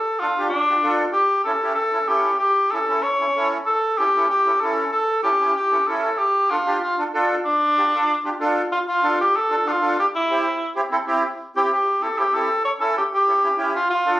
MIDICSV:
0, 0, Header, 1, 3, 480
1, 0, Start_track
1, 0, Key_signature, -1, "minor"
1, 0, Tempo, 314795
1, 1757, Time_signature, 4, 2, 24, 8
1, 13287, Key_signature, -1, "minor"
1, 21649, End_track
2, 0, Start_track
2, 0, Title_t, "Cor anglais"
2, 0, Program_c, 0, 69
2, 0, Note_on_c, 0, 69, 90
2, 292, Note_on_c, 0, 65, 86
2, 315, Note_off_c, 0, 69, 0
2, 736, Note_off_c, 0, 65, 0
2, 746, Note_on_c, 0, 62, 84
2, 1439, Note_off_c, 0, 62, 0
2, 1714, Note_on_c, 0, 67, 95
2, 2180, Note_off_c, 0, 67, 0
2, 2195, Note_on_c, 0, 69, 91
2, 2655, Note_off_c, 0, 69, 0
2, 2664, Note_on_c, 0, 69, 99
2, 3171, Note_on_c, 0, 67, 85
2, 3194, Note_off_c, 0, 69, 0
2, 3636, Note_off_c, 0, 67, 0
2, 3645, Note_on_c, 0, 67, 92
2, 4131, Note_on_c, 0, 69, 94
2, 4154, Note_off_c, 0, 67, 0
2, 4612, Note_on_c, 0, 73, 104
2, 4635, Note_off_c, 0, 69, 0
2, 5347, Note_off_c, 0, 73, 0
2, 5573, Note_on_c, 0, 69, 95
2, 6064, Note_on_c, 0, 67, 86
2, 6087, Note_off_c, 0, 69, 0
2, 6542, Note_off_c, 0, 67, 0
2, 6551, Note_on_c, 0, 67, 93
2, 7016, Note_on_c, 0, 69, 83
2, 7039, Note_off_c, 0, 67, 0
2, 7494, Note_off_c, 0, 69, 0
2, 7503, Note_on_c, 0, 69, 96
2, 7959, Note_off_c, 0, 69, 0
2, 7975, Note_on_c, 0, 67, 91
2, 8435, Note_off_c, 0, 67, 0
2, 8478, Note_on_c, 0, 67, 87
2, 8951, Note_on_c, 0, 69, 80
2, 8974, Note_off_c, 0, 67, 0
2, 9426, Note_on_c, 0, 67, 86
2, 9449, Note_off_c, 0, 69, 0
2, 9906, Note_on_c, 0, 65, 81
2, 9929, Note_off_c, 0, 67, 0
2, 10388, Note_off_c, 0, 65, 0
2, 10397, Note_on_c, 0, 65, 77
2, 10625, Note_off_c, 0, 65, 0
2, 11359, Note_on_c, 0, 62, 103
2, 12742, Note_off_c, 0, 62, 0
2, 13294, Note_on_c, 0, 65, 89
2, 13400, Note_off_c, 0, 65, 0
2, 13546, Note_on_c, 0, 65, 89
2, 13984, Note_off_c, 0, 65, 0
2, 14038, Note_on_c, 0, 67, 98
2, 14273, Note_on_c, 0, 69, 107
2, 14296, Note_off_c, 0, 67, 0
2, 14756, Note_on_c, 0, 65, 87
2, 14779, Note_off_c, 0, 69, 0
2, 15221, Note_off_c, 0, 65, 0
2, 15239, Note_on_c, 0, 67, 89
2, 15339, Note_off_c, 0, 67, 0
2, 15479, Note_on_c, 0, 64, 81
2, 16360, Note_off_c, 0, 64, 0
2, 17636, Note_on_c, 0, 67, 94
2, 17843, Note_off_c, 0, 67, 0
2, 17866, Note_on_c, 0, 67, 94
2, 18338, Note_on_c, 0, 69, 88
2, 18361, Note_off_c, 0, 67, 0
2, 18580, Note_on_c, 0, 67, 90
2, 18603, Note_off_c, 0, 69, 0
2, 18821, Note_on_c, 0, 69, 103
2, 18844, Note_off_c, 0, 67, 0
2, 19276, Note_off_c, 0, 69, 0
2, 19285, Note_on_c, 0, 73, 94
2, 19392, Note_off_c, 0, 73, 0
2, 19523, Note_on_c, 0, 69, 97
2, 19744, Note_off_c, 0, 69, 0
2, 19782, Note_on_c, 0, 67, 85
2, 19885, Note_off_c, 0, 67, 0
2, 20037, Note_on_c, 0, 67, 99
2, 20688, Note_off_c, 0, 67, 0
2, 20966, Note_on_c, 0, 65, 89
2, 21184, Note_off_c, 0, 65, 0
2, 21193, Note_on_c, 0, 65, 90
2, 21640, Note_off_c, 0, 65, 0
2, 21649, End_track
3, 0, Start_track
3, 0, Title_t, "Accordion"
3, 0, Program_c, 1, 21
3, 317, Note_on_c, 1, 62, 68
3, 319, Note_on_c, 1, 65, 59
3, 329, Note_on_c, 1, 69, 74
3, 400, Note_off_c, 1, 62, 0
3, 401, Note_off_c, 1, 65, 0
3, 406, Note_off_c, 1, 69, 0
3, 571, Note_on_c, 1, 62, 58
3, 572, Note_on_c, 1, 65, 56
3, 581, Note_on_c, 1, 67, 65
3, 731, Note_off_c, 1, 62, 0
3, 732, Note_off_c, 1, 65, 0
3, 736, Note_off_c, 1, 67, 0
3, 1044, Note_on_c, 1, 62, 61
3, 1049, Note_on_c, 1, 65, 59
3, 1054, Note_on_c, 1, 67, 70
3, 1124, Note_off_c, 1, 62, 0
3, 1127, Note_off_c, 1, 65, 0
3, 1129, Note_off_c, 1, 67, 0
3, 1262, Note_on_c, 1, 62, 67
3, 1262, Note_on_c, 1, 65, 65
3, 1266, Note_on_c, 1, 69, 81
3, 1605, Note_off_c, 1, 62, 0
3, 1605, Note_off_c, 1, 65, 0
3, 1607, Note_off_c, 1, 69, 0
3, 2226, Note_on_c, 1, 61, 66
3, 2229, Note_on_c, 1, 64, 62
3, 2244, Note_on_c, 1, 69, 78
3, 2315, Note_off_c, 1, 61, 0
3, 2317, Note_off_c, 1, 64, 0
3, 2324, Note_off_c, 1, 69, 0
3, 2473, Note_on_c, 1, 61, 59
3, 2479, Note_on_c, 1, 64, 57
3, 2481, Note_on_c, 1, 67, 68
3, 2643, Note_off_c, 1, 61, 0
3, 2646, Note_off_c, 1, 64, 0
3, 2647, Note_off_c, 1, 67, 0
3, 2933, Note_on_c, 1, 61, 66
3, 2934, Note_on_c, 1, 64, 55
3, 2940, Note_on_c, 1, 69, 69
3, 3029, Note_off_c, 1, 61, 0
3, 3029, Note_off_c, 1, 64, 0
3, 3033, Note_off_c, 1, 69, 0
3, 3172, Note_on_c, 1, 61, 73
3, 3178, Note_on_c, 1, 64, 64
3, 3186, Note_on_c, 1, 69, 71
3, 3521, Note_off_c, 1, 61, 0
3, 3524, Note_off_c, 1, 64, 0
3, 3528, Note_off_c, 1, 69, 0
3, 4159, Note_on_c, 1, 64, 62
3, 4160, Note_on_c, 1, 61, 71
3, 4165, Note_on_c, 1, 69, 74
3, 4243, Note_off_c, 1, 61, 0
3, 4243, Note_off_c, 1, 64, 0
3, 4246, Note_off_c, 1, 69, 0
3, 4391, Note_on_c, 1, 61, 59
3, 4394, Note_on_c, 1, 64, 55
3, 4396, Note_on_c, 1, 69, 67
3, 4563, Note_off_c, 1, 61, 0
3, 4564, Note_off_c, 1, 64, 0
3, 4565, Note_off_c, 1, 69, 0
3, 4876, Note_on_c, 1, 61, 63
3, 4877, Note_on_c, 1, 64, 59
3, 4886, Note_on_c, 1, 69, 69
3, 4962, Note_off_c, 1, 61, 0
3, 4962, Note_off_c, 1, 64, 0
3, 4967, Note_off_c, 1, 69, 0
3, 5109, Note_on_c, 1, 61, 69
3, 5112, Note_on_c, 1, 64, 65
3, 5121, Note_on_c, 1, 69, 75
3, 5450, Note_off_c, 1, 61, 0
3, 5452, Note_off_c, 1, 64, 0
3, 5457, Note_off_c, 1, 69, 0
3, 6088, Note_on_c, 1, 61, 68
3, 6094, Note_on_c, 1, 64, 61
3, 6107, Note_on_c, 1, 69, 71
3, 6169, Note_off_c, 1, 61, 0
3, 6171, Note_off_c, 1, 64, 0
3, 6178, Note_off_c, 1, 69, 0
3, 6335, Note_on_c, 1, 64, 58
3, 6336, Note_on_c, 1, 61, 65
3, 6345, Note_on_c, 1, 69, 66
3, 6496, Note_off_c, 1, 64, 0
3, 6497, Note_off_c, 1, 61, 0
3, 6501, Note_off_c, 1, 69, 0
3, 6795, Note_on_c, 1, 61, 64
3, 6797, Note_on_c, 1, 64, 60
3, 6811, Note_on_c, 1, 69, 70
3, 6882, Note_off_c, 1, 61, 0
3, 6883, Note_off_c, 1, 64, 0
3, 6890, Note_off_c, 1, 69, 0
3, 7049, Note_on_c, 1, 69, 74
3, 7052, Note_on_c, 1, 61, 67
3, 7057, Note_on_c, 1, 64, 62
3, 7382, Note_off_c, 1, 69, 0
3, 7383, Note_off_c, 1, 61, 0
3, 7386, Note_off_c, 1, 64, 0
3, 7978, Note_on_c, 1, 61, 67
3, 7987, Note_on_c, 1, 64, 62
3, 8001, Note_on_c, 1, 69, 77
3, 8075, Note_off_c, 1, 61, 0
3, 8079, Note_off_c, 1, 64, 0
3, 8086, Note_off_c, 1, 69, 0
3, 8234, Note_on_c, 1, 61, 66
3, 8241, Note_on_c, 1, 64, 58
3, 8251, Note_on_c, 1, 67, 70
3, 8407, Note_off_c, 1, 61, 0
3, 8411, Note_off_c, 1, 64, 0
3, 8416, Note_off_c, 1, 67, 0
3, 8704, Note_on_c, 1, 64, 60
3, 8706, Note_on_c, 1, 61, 65
3, 8719, Note_on_c, 1, 69, 70
3, 8798, Note_off_c, 1, 64, 0
3, 8799, Note_off_c, 1, 61, 0
3, 8805, Note_off_c, 1, 69, 0
3, 8957, Note_on_c, 1, 61, 72
3, 8965, Note_on_c, 1, 64, 63
3, 8970, Note_on_c, 1, 69, 75
3, 9297, Note_off_c, 1, 61, 0
3, 9301, Note_off_c, 1, 64, 0
3, 9303, Note_off_c, 1, 69, 0
3, 9918, Note_on_c, 1, 62, 71
3, 9920, Note_on_c, 1, 65, 65
3, 9933, Note_on_c, 1, 69, 74
3, 10006, Note_off_c, 1, 62, 0
3, 10007, Note_off_c, 1, 65, 0
3, 10013, Note_off_c, 1, 69, 0
3, 10151, Note_on_c, 1, 62, 64
3, 10154, Note_on_c, 1, 65, 56
3, 10165, Note_on_c, 1, 67, 72
3, 10326, Note_off_c, 1, 62, 0
3, 10328, Note_off_c, 1, 65, 0
3, 10333, Note_off_c, 1, 67, 0
3, 10633, Note_on_c, 1, 62, 68
3, 10641, Note_on_c, 1, 65, 62
3, 10650, Note_on_c, 1, 69, 69
3, 10723, Note_off_c, 1, 62, 0
3, 10727, Note_off_c, 1, 65, 0
3, 10732, Note_off_c, 1, 69, 0
3, 10881, Note_on_c, 1, 65, 76
3, 10883, Note_on_c, 1, 62, 83
3, 10884, Note_on_c, 1, 69, 86
3, 11220, Note_off_c, 1, 65, 0
3, 11221, Note_off_c, 1, 62, 0
3, 11221, Note_off_c, 1, 69, 0
3, 11844, Note_on_c, 1, 62, 68
3, 11856, Note_on_c, 1, 65, 62
3, 11863, Note_on_c, 1, 67, 73
3, 11929, Note_off_c, 1, 62, 0
3, 11935, Note_off_c, 1, 65, 0
3, 11939, Note_off_c, 1, 67, 0
3, 12104, Note_on_c, 1, 62, 76
3, 12108, Note_on_c, 1, 65, 66
3, 12120, Note_on_c, 1, 69, 80
3, 12264, Note_off_c, 1, 62, 0
3, 12265, Note_off_c, 1, 65, 0
3, 12271, Note_off_c, 1, 69, 0
3, 12564, Note_on_c, 1, 65, 70
3, 12566, Note_on_c, 1, 62, 75
3, 12574, Note_on_c, 1, 67, 77
3, 12649, Note_off_c, 1, 65, 0
3, 12650, Note_off_c, 1, 62, 0
3, 12654, Note_off_c, 1, 67, 0
3, 12799, Note_on_c, 1, 62, 82
3, 12804, Note_on_c, 1, 65, 74
3, 12816, Note_on_c, 1, 69, 90
3, 13139, Note_off_c, 1, 62, 0
3, 13142, Note_off_c, 1, 65, 0
3, 13147, Note_off_c, 1, 69, 0
3, 13761, Note_on_c, 1, 65, 63
3, 13765, Note_on_c, 1, 62, 65
3, 13772, Note_on_c, 1, 69, 74
3, 14016, Note_off_c, 1, 65, 0
3, 14018, Note_off_c, 1, 62, 0
3, 14021, Note_off_c, 1, 69, 0
3, 14483, Note_on_c, 1, 62, 63
3, 14483, Note_on_c, 1, 65, 63
3, 14487, Note_on_c, 1, 69, 76
3, 14569, Note_off_c, 1, 62, 0
3, 14569, Note_off_c, 1, 65, 0
3, 14571, Note_off_c, 1, 69, 0
3, 14721, Note_on_c, 1, 62, 71
3, 14728, Note_on_c, 1, 65, 65
3, 14738, Note_on_c, 1, 69, 77
3, 14808, Note_off_c, 1, 62, 0
3, 14811, Note_off_c, 1, 65, 0
3, 14816, Note_off_c, 1, 69, 0
3, 14959, Note_on_c, 1, 62, 68
3, 14960, Note_on_c, 1, 65, 59
3, 14960, Note_on_c, 1, 69, 75
3, 15202, Note_off_c, 1, 62, 0
3, 15203, Note_off_c, 1, 65, 0
3, 15203, Note_off_c, 1, 69, 0
3, 15699, Note_on_c, 1, 60, 69
3, 15699, Note_on_c, 1, 64, 62
3, 15714, Note_on_c, 1, 67, 78
3, 15944, Note_off_c, 1, 60, 0
3, 15944, Note_off_c, 1, 64, 0
3, 15952, Note_off_c, 1, 67, 0
3, 16394, Note_on_c, 1, 60, 77
3, 16396, Note_on_c, 1, 64, 77
3, 16399, Note_on_c, 1, 67, 84
3, 16483, Note_off_c, 1, 60, 0
3, 16484, Note_off_c, 1, 64, 0
3, 16486, Note_off_c, 1, 67, 0
3, 16629, Note_on_c, 1, 60, 87
3, 16639, Note_on_c, 1, 64, 80
3, 16655, Note_on_c, 1, 69, 96
3, 16721, Note_off_c, 1, 60, 0
3, 16726, Note_off_c, 1, 64, 0
3, 16733, Note_off_c, 1, 69, 0
3, 16871, Note_on_c, 1, 64, 77
3, 16875, Note_on_c, 1, 60, 78
3, 16880, Note_on_c, 1, 67, 91
3, 17129, Note_off_c, 1, 64, 0
3, 17131, Note_off_c, 1, 60, 0
3, 17134, Note_off_c, 1, 67, 0
3, 17617, Note_on_c, 1, 60, 71
3, 17625, Note_on_c, 1, 64, 65
3, 17630, Note_on_c, 1, 67, 84
3, 17862, Note_off_c, 1, 60, 0
3, 17866, Note_off_c, 1, 64, 0
3, 17868, Note_off_c, 1, 67, 0
3, 18311, Note_on_c, 1, 60, 69
3, 18323, Note_on_c, 1, 64, 60
3, 18335, Note_on_c, 1, 67, 69
3, 18400, Note_off_c, 1, 60, 0
3, 18406, Note_off_c, 1, 64, 0
3, 18412, Note_off_c, 1, 67, 0
3, 18560, Note_on_c, 1, 64, 65
3, 18565, Note_on_c, 1, 60, 74
3, 18583, Note_on_c, 1, 67, 81
3, 18645, Note_off_c, 1, 64, 0
3, 18647, Note_off_c, 1, 60, 0
3, 18656, Note_off_c, 1, 67, 0
3, 18799, Note_on_c, 1, 60, 66
3, 18809, Note_on_c, 1, 64, 61
3, 18818, Note_on_c, 1, 67, 73
3, 19040, Note_off_c, 1, 60, 0
3, 19044, Note_off_c, 1, 64, 0
3, 19049, Note_off_c, 1, 67, 0
3, 19504, Note_on_c, 1, 61, 68
3, 19513, Note_on_c, 1, 64, 61
3, 19523, Note_on_c, 1, 69, 78
3, 19763, Note_off_c, 1, 61, 0
3, 19768, Note_off_c, 1, 64, 0
3, 19773, Note_off_c, 1, 69, 0
3, 20232, Note_on_c, 1, 61, 67
3, 20245, Note_on_c, 1, 64, 61
3, 20247, Note_on_c, 1, 69, 69
3, 20319, Note_off_c, 1, 61, 0
3, 20326, Note_off_c, 1, 64, 0
3, 20327, Note_off_c, 1, 69, 0
3, 20475, Note_on_c, 1, 67, 79
3, 20476, Note_on_c, 1, 61, 69
3, 20480, Note_on_c, 1, 64, 65
3, 20560, Note_off_c, 1, 67, 0
3, 20561, Note_off_c, 1, 61, 0
3, 20563, Note_off_c, 1, 64, 0
3, 20696, Note_on_c, 1, 64, 67
3, 20697, Note_on_c, 1, 61, 80
3, 20703, Note_on_c, 1, 67, 84
3, 20946, Note_off_c, 1, 61, 0
3, 20946, Note_off_c, 1, 64, 0
3, 20949, Note_off_c, 1, 67, 0
3, 21426, Note_on_c, 1, 65, 67
3, 21427, Note_on_c, 1, 62, 70
3, 21442, Note_on_c, 1, 69, 80
3, 21649, Note_off_c, 1, 62, 0
3, 21649, Note_off_c, 1, 65, 0
3, 21649, Note_off_c, 1, 69, 0
3, 21649, End_track
0, 0, End_of_file